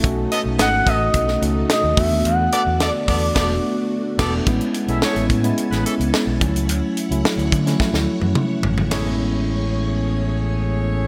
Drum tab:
CC |----------------|--------x-----x-|----------------|----------------|
RD |----------------|----------------|----------------|----------------|
HH |x-x-x-x-x-x-x-o-|x-x-x-o---------|xxxx-xxxxxxx--xx|x-xx-xxx--------|
SD |----o----o--o---|----o---o-----o-|----o----o--o---|----o--ooo------|
T1 |----------------|----------------|----------------|-----------o----|
T2 |----------------|----------------|----------------|------------o---|
FT |----------------|----------------|----------------|--------------oo|
BD |o-----o-o-----o-|------o-o-----o-|o-----o-------o-|------o-o-------|

CC |----------------|
RD |b---------------|
HH |----------------|
SD |o---------------|
T1 |----------------|
T2 |----------------|
FT |o---------------|
BD |----------------|